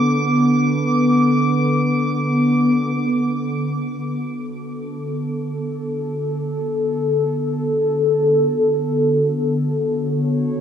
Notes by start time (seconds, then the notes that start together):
Already playing: D3 B3 F#4 A4 D6
3.01 D3
3.46 B3
3.63 F#4
4.00 A4
9.90 C#5